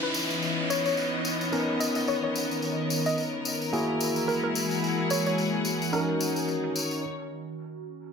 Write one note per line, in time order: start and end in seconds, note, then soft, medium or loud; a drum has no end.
0.00 1.50 E3 medium
0.00 1.52 E3 medium
0.00 3.72 B3 medium
0.00 1.50 C#4 medium
0.00 3.69 C#4 medium
0.00 1.50 D#4 medium
0.00 1.50 E4 medium
0.00 1.50 B4 medium
0.00 0.11 B4 medium
0.00 4.61 C#5 medium
0.00 1.50 D#5 medium
0.00 4.61 D#5 medium
0.00 closed hi-hat soft
0.00 downlifter medium
0.14 open hi-hat medium
0.14 tambourine medium
0.30 closed hi-hat soft
0.30 tambourine soft
0.42 closed hi-hat medium
0.42 tambourine soft
0.58 closed hi-hat medium
0.70 0.80 C#5 medium
0.70 tambourine medium
0.86 0.93 C#5 medium
0.86 closed hi-hat soft
0.86 tambourine soft
0.97 closed hi-hat medium
0.97 tambourine soft
1.13 closed hi-hat soft
1.25 open hi-hat medium
1.25 tambourine medium
1.41 closed hi-hat soft
1.41 tambourine soft
1.52 3.71 D#3 medium
1.52 3.70 B3 medium
1.52 3.71 B3 medium
1.52 3.70 C#4 medium
1.52 3.70 D#4 medium
1.52 3.70 A#4 medium
1.52 closed hi-hat medium
1.52 tambourine soft
1.69 closed hi-hat medium
1.80 1.90 D#5 medium
1.80 tambourine medium
1.95 2.03 D#5 medium
1.95 tambourine soft
2.07 7.03 A#4 medium
2.07 2.18 C#5 medium
2.07 closed hi-hat medium
2.07 tambourine soft
2.23 2.31 C#5 medium
2.35 closed hi-hat medium
2.35 open hi-hat medium
2.35 tambourine medium
2.51 closed hi-hat soft
2.51 tambourine soft
2.62 closed hi-hat medium
2.62 tambourine soft
2.79 closed hi-hat soft
2.90 tambourine medium
3.06 3.45 D#5 medium
3.06 closed hi-hat soft
3.06 tambourine medium
3.18 closed hi-hat medium
3.18 tambourine soft
3.33 closed hi-hat soft
3.45 open hi-hat medium
3.45 tambourine medium
3.61 closed hi-hat soft
3.61 tambourine soft
3.72 5.91 E3 medium
3.72 5.90 G#3 medium
3.72 5.90 A#3 medium
3.72 5.92 E4 medium
3.72 5.90 E4 medium
3.72 8.09 F#4 medium
3.72 5.90 F#4 medium
3.72 5.90 G#4 medium
3.72 closed hi-hat medium
3.72 tambourine soft
3.88 closed hi-hat soft
4.01 tambourine medium
4.11 6.72 G#4 medium
4.15 7.03 F#5 medium
4.15 tambourine medium
4.28 4.38 A#4 medium
4.28 closed hi-hat medium
4.28 tambourine soft
4.43 4.51 A#4 medium
4.43 closed hi-hat soft
4.55 open hi-hat medium
4.55 tambourine medium
4.71 closed hi-hat soft
4.71 tambourine soft
4.83 closed hi-hat medium
4.83 tambourine soft
4.99 closed hi-hat soft
5.10 5.20 C#5 medium
5.10 tambourine medium
5.26 5.34 C#5 medium
5.26 closed hi-hat soft
5.26 tambourine medium
5.38 closed hi-hat medium
5.38 tambourine soft
5.54 closed hi-hat soft
5.65 open hi-hat medium
5.65 tambourine medium
5.81 closed hi-hat soft
5.81 tambourine soft
5.92 8.11 D#3 medium
5.92 8.11 C#4 medium
5.92 7.03 C#4 medium
5.92 7.03 D#4 medium
5.92 7.03 F#4 medium
5.92 7.03 A#4 medium
5.92 6.15 A#4 medium
5.92 closed hi-hat medium
5.92 tambourine soft
6.09 closed hi-hat soft
6.21 tambourine loud
6.36 tambourine medium
6.48 closed hi-hat medium
6.48 tambourine soft
6.64 closed hi-hat soft
6.75 7.03 C#5 medium
6.75 tambourine medium
6.91 closed hi-hat soft
6.91 tambourine soft